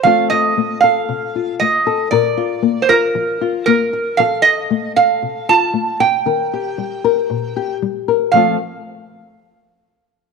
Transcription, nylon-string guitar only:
\new Staff \with { instrumentName = "Nylon-string guitar" } { \time 4/4 \key f \mixolydian \tempo 4 = 116 << { <a c' f' a'>8 f'4 a'4 f'4 a'8 | bes'8 f'4 f'4 f'4 r8 | a'4. a'4 f'4. | bes'8 g'4 bes'4 g'4 bes'8 |
<a c' f' a'>8 r2. r8 | } \\ { f4 a4 c4 a4 | bes,4 bes4 f4 bes4 | f4 a4 c4 a4 | ees4 g4 bes,4 g4 |
f8 r2. r8 | } >> }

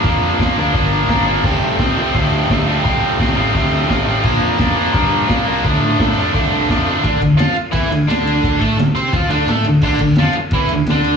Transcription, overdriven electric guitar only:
\new Staff \with { instrumentName = "Overdriven electric guitar" } { \clef bass \time 4/4 \key d \minor \tempo 4 = 172 <bes, f bes d'>4 <bes, f bes d'>8 <bes, f bes d'>8 <bes, f bes d'>4 <bes, f bes d'>8 <bes, f bes d'>8 | <f, c f a c'>4 <f, c f a c'>8 <f, c f a c'>8 <f, c f a c'>4 <f, c f a c'>8 <f, c f a c'>8 | <f, c f a c'>4 <f, c f a c'>8 <f, c f a c'>8 <f, c f a c'>4 <f, c f a c'>8 <f, c f a c'>8 | <bes, f bes d'>4 <bes, f bes d'>8 <bes, f bes d'>8 <bes, f bes d'>4 <bes, f bes d'>8 <bes, f bes d'>8 |
<d f a d'>4 <d f a d'>8 <d f a d'>8 <d f a d'>4 <d f a d'>8 <d f a d'>8 | <d d'>8 d8 <f f'>8 r8 <e e'>8 d8 <d d'>4~ | <d d'>8 <a a'>8 d8 <c' c''>8 <f f'>8 <d d'>8 <a a'>8 d8 | <d d'>8 d8 <f f'>8 r8 <e e'>8 d8 <d d'>4 | }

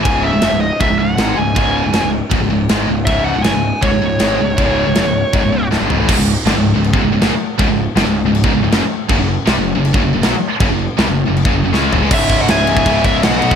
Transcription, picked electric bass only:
\new Staff \with { instrumentName = "Picked electric bass" } { \clef bass \time 4/4 \key cis \minor \tempo 4 = 159 cis,,8. cis,,16 fis,,16 cis,,8 r16 cis,,16 cis,,16 cis,,8 gis,,8 cis,,8 | cis,,8. cis,,16 fis,,16 cis,,8 r16 cis,,16 cis,,16 cis,,8 gis,,8 cis,,8 | cis,,8. cis,,16 fis,,16 cis,,8 r16 cis,,16 cis,,16 cis,,8 gis,,8 cis,,8 | cis,,8. cis,,16 fis,,16 cis,,8 r16 cis,,16 cis,,16 cis,,8 d,,16 g,,16 cis,,16 a,,16 |
cis,,16 cis,,8 r16 g,,16 cis,,8 cis,,8 cis,,16 cis,,16 cis,,16 fis,,16 r8. | cis,,16 cis,,8 r16 g,,16 cis,,8 cis,,8 cis,,16 cis,,16 cis,,16 fis,,16 r8. | fis,,16 fis,,8 r16 bis,,16 fis,,8 fis,,8 fis,,16 fis,,16 fis,,16 b,,16 r8. | fis,,16 fis,,8 r16 bis,,16 fis,,8 fis,,8 fis,,16 fis,,16 fis,,16 cis,8 fis,,16 cis,16 |
cis,,4 cis,,4 cis,,8 cis,,8 b,,8 b,,8 | }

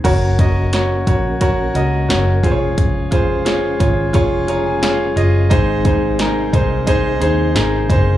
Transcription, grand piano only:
\new Staff \with { instrumentName = "Grand piano" } { \time 4/4 \key des \major \tempo 4 = 88 << { r1 | r2 r8 bes''16 aes''16 f''8 ees''8 | aes,4. r2 r8 | } \\ { <ges' bes' des''>8 <ges' bes' ees''>8 <ges' bes' des''>8 <ges' bes' des''>8 <ges' bes' des''>8 <ges' bes' ees''>8 <ges' bes' des''>8 <f' aes' c'' des''>8~ | <f' aes' c'' des''>8 <f' aes' c''>8 <f' aes' des''>8 <f' aes' des''>8 <f' aes' des''>8 <f' aes' des''>8 <f' aes' des''>8 <f' aes'>8 | <ees' aes' c''>8 <ees' aes' c''>8 <ees' aes' bes'>8 <ees' aes' c''>8 <ees' aes' c''>8 <ees' aes' c''>8 <ees' aes' bes'>8 <ees' aes' c''>8 | } >> }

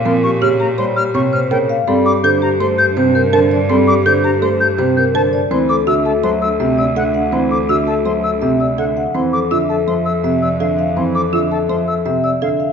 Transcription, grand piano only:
\new Staff \with { instrumentName = "Grand piano" } { \clef bass \time 5/4 \key f \major \tempo 4 = 165 f8 r8 des8 r8 g8 r8 c8 r8 des8 r8 | g8 r8 d8 r8 a8 r8 c8 r8 d8 r8 | g8 r8 d8 r8 a8 r8 c8 r8 d8 r8 | e8 r8 d8 r8 fis8 r8 c8 r8 d8 r8 |
e8 r8 d8 r8 fis8 r8 c8 r8 d8 r8 | e8 r8 d8 r8 f8 r8 c8 r8 d8 r8 | e8 r8 d8 r8 f8 r8 c8 r8 d8 r8 | }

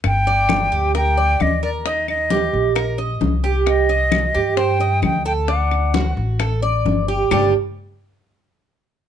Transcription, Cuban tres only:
\new Staff \with { instrumentName = "Cuban tres" } { \time 4/4 \key g \minor \tempo 4 = 132 r8 d''4 g'8 bes'8 d''4 bes'8 | ees'4 g'4 bes'8 ees''4 g'8~ | g'8 ees''4 g'8 c''8 ees''4 a'8 | d'4 fis'4 a'8 d''4 g'8 |
<g d' g'>8 r2. r8 | }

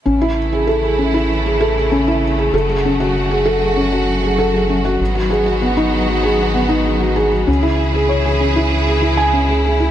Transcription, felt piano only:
\new Staff \with { instrumentName = "Felt piano" } { \time 4/4 \key a \lydian \tempo 4 = 97 cis'16 e'16 r16 gis'16 a'16 gis'16 cis'16 e'16 r16 gis'16 a'16 gis'16 cis'16 e'16 r16 gis'16 | a'16 gis'16 cis'16 fis'16 r16 gis'16 a'16 gis'16 cis'16 fis'16 r16 gis'16 a'16 gis'16 cis'16 fis'16 | r16 fis'16 gis'16 fis'16 b16 dis'16 r16 fis'16 gis'16 fis'16 b16 dis'16 r16 fis'16 gis'16 fis'16 | cis'16 e'16 r16 gis'16 cis''16 gis'16 cis'16 e'16 r16 gis'16 e'16 gis''16 cis'16 gis'16 gis'16 e'16 | }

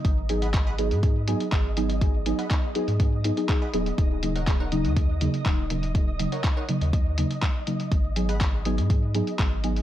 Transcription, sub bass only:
\new Staff \with { instrumentName = "Sub bass" } { \clef bass \time 4/4 \key aes \dorian \tempo 4 = 122 aes,,4.~ aes,,16 aes,4 r16 aes,,4~ | aes,,8. r4 aes,4 r8. ees,,16 r16 | ees,,4.~ ees,,16 ees,4 r16 ees,,4~ | ees,,8. r4 ees,4 r4 r16 |
aes,,4.~ aes,,16 aes,4 r16 aes,,4 | }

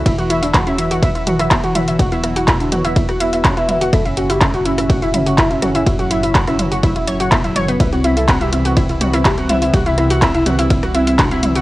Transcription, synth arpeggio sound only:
\new Staff \with { instrumentName = "Synth arpeggio sound" } { \time 4/4 \key fis \phrygian \tempo 4 = 124 <e' e''>16 <fis' fis''>16 <e' e''>16 <e' e''>16 <fis' fis''>16 <e' e''>16 <e' e''>16 <fis' fis''>16 <e' e''>16 <e' e''>16 <fis' fis''>16 <e' e''>16 <e' e''>16 <fis' fis''>16 <e' e''>16 <e' e''>16 | <fis' fis''>16 <e' e''>16 <e' e''>16 <fis' fis''>16 <e' e''>16 <e' e''>16 <fis' fis''>16 <e' e''>16 <e' e''>16 <fis' fis''>16 <e' e''>16 <e' e''>16 <fis' fis''>16 <e' e''>16 <e' e''>16 <fis' fis''>16 | <e' e''>16 <e' e''>16 <fis' fis''>16 <e' e''>16 <e' e''>16 <fis' fis''>16 <e' e''>16 <e' e''>16 <fis' fis''>16 <e' e''>16 <e' e''>16 <fis' fis''>16 <e' e''>16 <e' e''>16 <fis' fis''>16 <e' e''>16 | <e' e''>16 <fis' fis''>16 <e' e''>16 <e' e''>16 <fis' fis''>16 <e' e''>16 <e' e''>16 <fis' fis''>16 <e' e''>16 <e' e''>16 <cis'' cis'''>16 <fis' fis''>16 <e' e''>16 <e' e''>16 <cis'' cis'''>16 <b b'>16 |
<e' e''>16 <fis' fis''>16 <e' e''>16 <e' e''>16 <fis' fis''>16 <e' e''>16 <e' e''>16 <fis' fis''>16 <e' e''>16 <e' e''>16 <fis' fis''>16 <e' e''>16 <e' e''>16 <fis' fis''>16 <e' e''>16 <e' e''>16 | <fis' fis''>16 <e' e''>16 <e' e''>16 <fis' fis''>16 <e' e''>16 <e' e''>16 <fis' fis''>16 <e' e''>16 <e' e''>16 <fis' fis''>16 <e' e''>16 <e' e''>16 <fis' fis''>16 <e' e''>16 <e' e''>16 <fis' fis''>16 | }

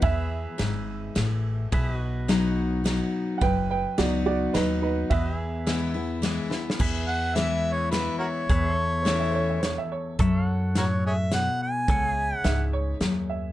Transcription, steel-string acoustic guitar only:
\new Staff \with { instrumentName = "Steel-string acoustic guitar" } { \clef bass \time 3/4 \key e \major \tempo 4 = 106 << { r2. | r4 <fis b dis' fis'>4 <fis b dis' fis'>4 | r4 <fis b dis' fis'>4 <fis b dis' fis'>4 | r4 <e gis b e'>8 <b e'>8 <e gis b e'>8 <b e'>8 |
r4 <e gis b e'>4 <e gis b e'>4 | r4 <e a cis' e'>4 r4 | r2. | r2. | } \\ { e,4 gis,4 a,4 | b,2 r4 | fis,2 r4 | e,2 r4 |
e,2 r4 | e,2 e,4 | fis,4 a,4 b,4 | cis4 gis,4 fis,4 | } >> }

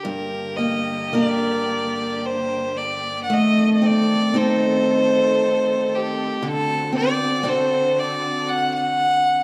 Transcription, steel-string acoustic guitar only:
\new Staff \with { instrumentName = "Steel-string acoustic guitar" } { \time 3/4 \key g \minor \tempo 4 = 58 g,8 bes8 <bes d' bes'>2 | a8 c'8 <c' ees' a'>2 | d8 c'8 <c' d' a'>2 | }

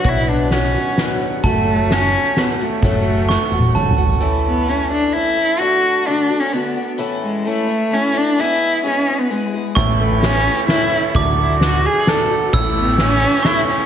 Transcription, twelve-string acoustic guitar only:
\new Staff \with { instrumentName = "Twelve-string acoustic guitar" } { \time 3/4 \key a \major \tempo 4 = 130 <b, fis b d' fis' cis''>4 <b d' fis' cis''>8 <b d' fis' cis''>8 <b d' fis' cis''>8 <b d' fis' cis''>8 | <fis, cis fis a cis' fis'>4 <fis a cis' fis'>4 <fis a cis' fis'>8 <fis a cis' fis'>8 | <fis, cis fis a cis' fis'>4 <fis a cis' fis'>8 <fis a cis' fis'>8 <fis a cis' fis'>8 <fis a cis' fis'>8 | <a, e a cis' e'>4 <e a cis' e'>8 <a cis' e'>8 <e a cis' e'>8 <a cis' e'>8 |
<d a d' fis'>4 <d a d' fis'>8 <a d' fis'>8 <d a d' fis'>8 <a d' fis'>8 | <a, e a cis' e'>4 <e a cis' e'>8 <a cis' e'>8 <e a cis' e'>8 <a cis' e'>8 | <gis b e' gis'>4 <gis b e' gis'>4 <gis b e' gis'>8 <b e' gis'>8 | <a, e a cis' e'>4 <e a cis' e'>4 <e a cis' e'>8 <a cis' e'>8 |
<d a d' fis'>4 <d a d' fis'>8 <a d' fis'>8 <d a d' fis'>8 <a d' fis'>8 | <a, e a cis' e'>4 <e a cis' e'>8 <a cis' e'>8 <e a cis' e'>8 <a cis' e'>8 | }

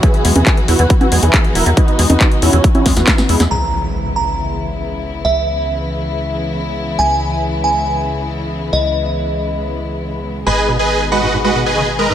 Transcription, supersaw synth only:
\new Staff \with { instrumentName = "Supersaw synth" } { \time 4/4 \key cis \dorian \tempo 4 = 138 <gis' b' e'' gis''>8 r16 <gis' b' e'' gis''>8 r16 <fis' b' fis''>8 r16 <fis' b' fis''>16 r16 <gis' b' e'' gis''>8 r16 <ais' e'' fis'' ais''>16 r16 | <dis' fis' b' dis''>8 r16 <dis' fis' b' dis''>8 r16 <cis' e' fis' cis''>8 r16 <cis' e' fis' cis''>16 r16 <b e' fis' b'>8 r16 <gis b e' gis'>16 r16 | r1 | r1 |
r1 | r1 | <gis' b' dis'' gis''>8 r16 <gis' b' dis'' gis''>8 r16 <fis' b' dis'' fis''>8 r16 <fis' b' dis'' fis''>16 r16 <gis' b' dis'' gis''>8 r16 <ais' b' dis'' ais''>16 r16 | }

